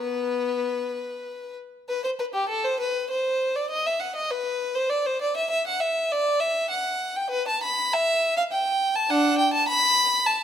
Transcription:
Already playing: B3 B4
1.89 B4
2.04 C5
2.19 B4
2.34 G4
2.48 A4
2.64 C5
2.79 B4
3.10 C5
3.55 D5
3.70 D#5
3.86 E5
4.00 F#5
4.15 D#5
4.30 B4
4.75 C5
4.89 D5
5.06 C5
5.21 D5
5.36 E5
5.50 E5
5.67 F#5
5.80 E5
6.11 D5
6.40 E5
6.70 F#5
7.16 G5
7.30 B4
7.48 A5
7.63 B5
7.93 E5
8.37 F5
8.52 G5
8.95 A5
9.10 D4 F#5
9.38 G5
9.53 A5
9.68 B5
10.26 A5

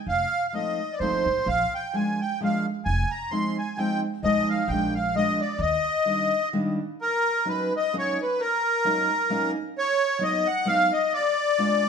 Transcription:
0.07 F1 F5
0.48 F5
0.53 F3 A3 C4 D#4 D#5
0.92 D5
1.00 G1 F3 A3 C4 D#4 C5
1.26 A1
1.46 A#1 F5
1.75 G5
1.93 F3 G#3 A#3 D4 G#5
2.21 G5
2.40 F3 G#3 A#3 D4 F5
2.85 F1 G#5
3.11 A#5
3.31 F3 G#3 C4 D#4 C6
3.58 G#5
3.77 F3 G#3 C4 D#4 G5
4.23 A#1 F3 G#3 A#3 D#4 D#5
4.50 F5
4.68 A#1 F3 G#3 A#3 D4 G5
4.95 F5
5.15 F3 G#3 A#3 D4 D#5
5.41 D5
5.59 D#2 D#5
6.05 D#3 G3 A#3 D4
6.53 D#3 G3 A#3 D4
7.01 A#4
7.45 F#3 A#3 C#4 D#4 B4
7.77 D#5
7.93 F#3 A#3 C#4 D#4
7.98 C#5
8.22 B4
8.40 A#4
8.84 F#3 A#3 C#4 D#4
9.30 F#3 A#3 C#4 D#4
9.78 C#5
10.19 F#3 A#3 B3 D#4
10.23 D#5
10.47 F#5
10.65 F#3 A#3 B3 D#4 F5
10.93 D#5
11.13 D5
11.58 G#3 A#3 D4 F4

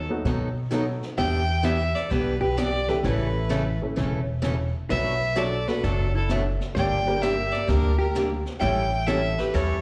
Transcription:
0.09 F#3 A3 B3 D#4 F#4
0.25 B2 D#3 F#3 B3 D#4 A4, brush sweep, snare
0.71 D#3 F#3 A3 B3 D#4 A4, snare, hi-hat pedal
1.03 snare
1.18 E2 E3 B3 D4 G4 E5 G5, brush sweep, snare
1.63 E3 B3 D4 G4 B4 E5, snare, hi-hat pedal
1.95 A4 D5, snare
2.10 B1 E3 B3 D4 G4 B4, brush sweep, snare
2.41 G4 B4, kick
2.57 E3 B3 D4 G4 D5, snare, hi-hat pedal
2.88 E3 A3 C#4 E4 G4 A4 B4, snare
3.04 A1 C#3 E3 A3 C#4 E4 A4 B4, brush sweep, snare
3.50 C#3 E3 A3 C#4 A4, snare, hi-hat pedal
3.82 E3 A3 C#4 E4 A4
3.96 E1 C#3 E3 A3 C#4 A4, brush sweep, snare
4.42 C#3 E3 A3 C#4 A4, snare, hi-hat pedal
4.90 B1 B2 F#3 A3 D4 F#4 B4 E5, brush sweep, snare
5.35 B2 F#3 A3 D4 F#4 A4 D5, snare, hi-hat pedal
5.67 A3 B3 D4 F#4 A4 B4, snare
5.83 F#1 B2 F#3 A3 D4 F#4 A4, brush sweep, snare
6.15 E4 A4
6.29 B2 F#3 A3 D4 F#4, snare, hi-hat pedal
6.60 snare
6.75 G1 D3 G3 A#3 D4 G4 D5 G5, brush sweep, snare
7.06 G3 A#3 D4 G4 A#4
7.21 D3 G3 A#3 D4 G4 A#4 E5, snare, hi-hat pedal
7.51 A4 D5, snare
7.67 D2 D3 G3 A#3 D4 G4 A#4, brush sweep, snare
7.99 G4 A#4
8.15 D3 G3 A#3 D4 G4, snare, hi-hat pedal
8.46 snare
8.60 A1 E3 G3 C#4 E4 A4 E5 G5, brush sweep, snare
9.07 E3 G3 A3 C#4 E4 G4 A4 E5, snare, hi-hat pedal
9.39 G4 B4, snare
9.54 E2 E3 G3 C#4 E4 A4 C#5, brush sweep, snare

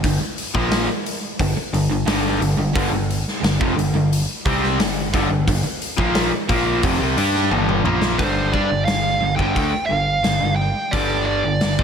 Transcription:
0.03 G1 G2 D3, kick, open hi-hat
0.20 muted overdriven electric guitar stroke, muted distorted electric guitar stroke, muted picked electric bass stroke
0.38 open hi-hat
0.54 A#1 A#2 F3 A#3, kick
0.71 snare, open hi-hat
1.06 open hi-hat
1.39 G1 G2 D3, kick, open hi-hat
1.55 muted picked electric bass stroke, muted distorted electric guitar stroke, muted overdriven electric guitar stroke
1.73 G1 G2 D3, open hi-hat
1.90 G1 G2 D3
2.06 G1 G2 D3 G3, snare, open hi-hat
2.40 G1 G2 D3, open hi-hat
2.57 G1 G2 D3
2.76 G1 G2 D3, kick, open hi-hat
2.91 G1 G2 D3
3.10 open hi-hat
3.28 snare
3.40 G1 G2 D3, open hi-hat
3.44 G2, snare
3.61 F1 F2 C3, kick
3.76 G1 G2 D3, open hi-hat
3.93 G1 G2 D3
4.13 open hi-hat
4.45 C2 C3 G3 C4, kick, open hi-hat
4.64 snare
4.79 G1 G2 D3, snare, open hi-hat
5.14 G1 G2 D3, kick, open hi-hat
5.29 G1 G2 D3
5.47 G1 G2 D3, kick, open hi-hat
5.63 muted overdriven electric guitar stroke, muted distorted electric guitar stroke, muted picked electric bass stroke
5.82 open hi-hat
5.97 A#1 A#2 F3 A#3, kick
6.15 snare, open hi-hat
6.49 A#1 A#2 F3 A#3, kick, open hi-hat
6.82 F1 F2 C3, kick, open hi-hat
6.99 C2 C3 G3
7.17 G2 G3 D4 G4, open hi-hat
7.35 snare
7.51 G1 G2 D3 G3, high tom
7.69 mid tom
7.84 A#1 A#2 F3 A#3, mid tom
8.02 snare
8.18 G1 G2 D3 G3 C5, kick, open hi-hat
8.52 G2 G3 D4 D5, kick
8.69 G1 G2 D3
8.85 G1 G2 D3 F5, snare, open hi-hat
9.20 G1 G2 D3
9.36 G1 G2 D3 G5, kick
9.54 D2 D3 A3, kick, open hi-hat
9.72 muted overdriven electric guitar stroke, muted picked electric bass stroke, muted distorted electric guitar stroke
9.86 G2 D3 F5
9.91 G1
10.23 G1 G2 D3, snare, open hi-hat
10.40 G1 G2 D3
10.56 G5
10.91 G1 G2 D3 G3 D5, kick, open hi-hat
11.26 D5
11.45 G1 G2 D3
11.61 G1 G2 D3, snare, open hi-hat
11.79 A#1 A#2 F3, kick

